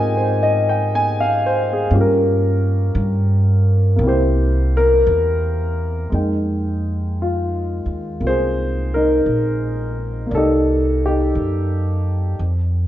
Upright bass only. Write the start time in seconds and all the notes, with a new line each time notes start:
Already playing: G#2
1.91 G2
2.95 G2
3.99 C2
5.07 E2
6.12 F2
7.86 D#2
8.21 C2
9.26 A#1
10.31 C2
11.35 F#2
12.39 F2